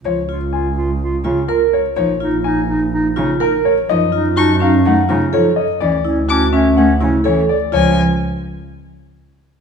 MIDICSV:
0, 0, Header, 1, 7, 480
1, 0, Start_track
1, 0, Tempo, 480000
1, 48, Time_signature, 4, 2, 24, 8
1, 9606, End_track
2, 0, Start_track
2, 0, Title_t, "Violin"
2, 0, Program_c, 0, 40
2, 4369, Note_on_c, 0, 85, 68
2, 4549, Note_off_c, 0, 85, 0
2, 6294, Note_on_c, 0, 86, 63
2, 6472, Note_off_c, 0, 86, 0
2, 7732, Note_on_c, 0, 80, 73
2, 7953, Note_off_c, 0, 80, 0
2, 9606, End_track
3, 0, Start_track
3, 0, Title_t, "Grand piano"
3, 0, Program_c, 1, 0
3, 53, Note_on_c, 1, 73, 58
3, 362, Note_off_c, 1, 73, 0
3, 526, Note_on_c, 1, 80, 46
3, 839, Note_off_c, 1, 80, 0
3, 1482, Note_on_c, 1, 70, 67
3, 1733, Note_on_c, 1, 73, 57
3, 1798, Note_off_c, 1, 70, 0
3, 1949, Note_off_c, 1, 73, 0
3, 1964, Note_on_c, 1, 73, 75
3, 2279, Note_off_c, 1, 73, 0
3, 2443, Note_on_c, 1, 80, 65
3, 2758, Note_off_c, 1, 80, 0
3, 3410, Note_on_c, 1, 70, 80
3, 3650, Note_on_c, 1, 73, 67
3, 3721, Note_off_c, 1, 70, 0
3, 3894, Note_on_c, 1, 75, 81
3, 3961, Note_off_c, 1, 73, 0
3, 4202, Note_off_c, 1, 75, 0
3, 4375, Note_on_c, 1, 81, 62
3, 4616, Note_on_c, 1, 77, 80
3, 4682, Note_off_c, 1, 81, 0
3, 4864, Note_on_c, 1, 78, 62
3, 4923, Note_off_c, 1, 77, 0
3, 5165, Note_off_c, 1, 78, 0
3, 5336, Note_on_c, 1, 73, 76
3, 5561, Note_on_c, 1, 75, 62
3, 5643, Note_off_c, 1, 73, 0
3, 5804, Note_on_c, 1, 74, 71
3, 5877, Note_off_c, 1, 75, 0
3, 6118, Note_off_c, 1, 74, 0
3, 6284, Note_on_c, 1, 81, 60
3, 6526, Note_on_c, 1, 76, 73
3, 6598, Note_off_c, 1, 81, 0
3, 6767, Note_on_c, 1, 78, 60
3, 6839, Note_off_c, 1, 76, 0
3, 7080, Note_off_c, 1, 78, 0
3, 7253, Note_on_c, 1, 73, 76
3, 7491, Note_on_c, 1, 74, 62
3, 7562, Note_off_c, 1, 73, 0
3, 7733, Note_on_c, 1, 73, 78
3, 7801, Note_off_c, 1, 74, 0
3, 7954, Note_off_c, 1, 73, 0
3, 9606, End_track
4, 0, Start_track
4, 0, Title_t, "Vibraphone"
4, 0, Program_c, 2, 11
4, 288, Note_on_c, 2, 65, 50
4, 600, Note_off_c, 2, 65, 0
4, 1245, Note_on_c, 2, 65, 57
4, 1487, Note_on_c, 2, 70, 73
4, 1559, Note_off_c, 2, 65, 0
4, 1799, Note_off_c, 2, 70, 0
4, 2204, Note_on_c, 2, 65, 62
4, 2518, Note_off_c, 2, 65, 0
4, 3161, Note_on_c, 2, 65, 65
4, 3403, Note_on_c, 2, 70, 80
4, 3478, Note_off_c, 2, 65, 0
4, 3718, Note_off_c, 2, 70, 0
4, 4122, Note_on_c, 2, 65, 68
4, 4363, Note_on_c, 2, 66, 66
4, 4438, Note_off_c, 2, 65, 0
4, 4602, Note_on_c, 2, 61, 82
4, 4678, Note_off_c, 2, 66, 0
4, 4918, Note_off_c, 2, 61, 0
4, 5087, Note_on_c, 2, 65, 60
4, 5328, Note_on_c, 2, 69, 78
4, 5400, Note_off_c, 2, 65, 0
4, 5640, Note_off_c, 2, 69, 0
4, 6045, Note_on_c, 2, 64, 63
4, 6288, Note_on_c, 2, 66, 61
4, 6359, Note_off_c, 2, 64, 0
4, 6530, Note_on_c, 2, 61, 75
4, 6600, Note_off_c, 2, 66, 0
4, 6841, Note_off_c, 2, 61, 0
4, 7004, Note_on_c, 2, 64, 62
4, 7243, Note_on_c, 2, 69, 73
4, 7319, Note_off_c, 2, 64, 0
4, 7558, Note_off_c, 2, 69, 0
4, 7723, Note_on_c, 2, 65, 76
4, 7949, Note_off_c, 2, 65, 0
4, 9606, End_track
5, 0, Start_track
5, 0, Title_t, "Clarinet"
5, 0, Program_c, 3, 71
5, 43, Note_on_c, 3, 65, 34
5, 213, Note_off_c, 3, 65, 0
5, 289, Note_on_c, 3, 65, 49
5, 457, Note_off_c, 3, 65, 0
5, 528, Note_on_c, 3, 65, 58
5, 696, Note_off_c, 3, 65, 0
5, 767, Note_on_c, 3, 65, 57
5, 935, Note_off_c, 3, 65, 0
5, 1019, Note_on_c, 3, 65, 62
5, 1183, Note_off_c, 3, 65, 0
5, 1258, Note_on_c, 3, 65, 55
5, 1422, Note_off_c, 3, 65, 0
5, 1496, Note_on_c, 3, 65, 39
5, 1661, Note_off_c, 3, 65, 0
5, 1970, Note_on_c, 3, 63, 41
5, 2137, Note_off_c, 3, 63, 0
5, 2206, Note_on_c, 3, 63, 59
5, 2375, Note_off_c, 3, 63, 0
5, 2450, Note_on_c, 3, 63, 66
5, 2617, Note_off_c, 3, 63, 0
5, 2692, Note_on_c, 3, 63, 66
5, 2858, Note_off_c, 3, 63, 0
5, 2927, Note_on_c, 3, 63, 72
5, 3095, Note_off_c, 3, 63, 0
5, 3169, Note_on_c, 3, 63, 64
5, 3337, Note_off_c, 3, 63, 0
5, 3401, Note_on_c, 3, 63, 48
5, 3572, Note_off_c, 3, 63, 0
5, 3893, Note_on_c, 3, 63, 40
5, 4059, Note_off_c, 3, 63, 0
5, 4133, Note_on_c, 3, 63, 60
5, 4299, Note_off_c, 3, 63, 0
5, 4367, Note_on_c, 3, 63, 80
5, 4535, Note_off_c, 3, 63, 0
5, 4602, Note_on_c, 3, 63, 72
5, 4772, Note_off_c, 3, 63, 0
5, 4848, Note_on_c, 3, 63, 68
5, 5016, Note_off_c, 3, 63, 0
5, 5092, Note_on_c, 3, 63, 62
5, 5258, Note_off_c, 3, 63, 0
5, 5333, Note_on_c, 3, 63, 44
5, 5499, Note_off_c, 3, 63, 0
5, 5817, Note_on_c, 3, 61, 39
5, 5982, Note_off_c, 3, 61, 0
5, 6047, Note_on_c, 3, 61, 53
5, 6216, Note_off_c, 3, 61, 0
5, 6291, Note_on_c, 3, 61, 74
5, 6458, Note_off_c, 3, 61, 0
5, 6526, Note_on_c, 3, 61, 67
5, 6695, Note_off_c, 3, 61, 0
5, 6772, Note_on_c, 3, 61, 66
5, 6939, Note_off_c, 3, 61, 0
5, 7018, Note_on_c, 3, 61, 57
5, 7182, Note_off_c, 3, 61, 0
5, 7263, Note_on_c, 3, 61, 42
5, 7426, Note_off_c, 3, 61, 0
5, 9606, End_track
6, 0, Start_track
6, 0, Title_t, "Cello"
6, 0, Program_c, 4, 42
6, 48, Note_on_c, 4, 53, 52
6, 228, Note_off_c, 4, 53, 0
6, 1243, Note_on_c, 4, 49, 54
6, 1425, Note_off_c, 4, 49, 0
6, 1964, Note_on_c, 4, 53, 65
6, 2145, Note_off_c, 4, 53, 0
6, 3168, Note_on_c, 4, 49, 63
6, 3348, Note_off_c, 4, 49, 0
6, 3894, Note_on_c, 4, 53, 75
6, 4072, Note_off_c, 4, 53, 0
6, 4852, Note_on_c, 4, 57, 60
6, 5030, Note_off_c, 4, 57, 0
6, 5091, Note_on_c, 4, 49, 65
6, 5270, Note_off_c, 4, 49, 0
6, 5330, Note_on_c, 4, 53, 77
6, 5510, Note_off_c, 4, 53, 0
6, 5813, Note_on_c, 4, 52, 64
6, 5991, Note_off_c, 4, 52, 0
6, 6775, Note_on_c, 4, 57, 54
6, 6952, Note_off_c, 4, 57, 0
6, 7010, Note_on_c, 4, 49, 57
6, 7189, Note_off_c, 4, 49, 0
6, 7248, Note_on_c, 4, 52, 82
6, 7428, Note_off_c, 4, 52, 0
6, 7730, Note_on_c, 4, 53, 80
6, 7952, Note_off_c, 4, 53, 0
6, 9606, End_track
7, 0, Start_track
7, 0, Title_t, "Double bass"
7, 0, Program_c, 5, 43
7, 46, Note_on_c, 5, 37, 52
7, 1831, Note_off_c, 5, 37, 0
7, 1969, Note_on_c, 5, 34, 56
7, 3752, Note_off_c, 5, 34, 0
7, 3893, Note_on_c, 5, 42, 65
7, 5674, Note_off_c, 5, 42, 0
7, 5808, Note_on_c, 5, 38, 58
7, 7592, Note_off_c, 5, 38, 0
7, 7736, Note_on_c, 5, 37, 61
7, 7956, Note_off_c, 5, 37, 0
7, 9606, End_track
0, 0, End_of_file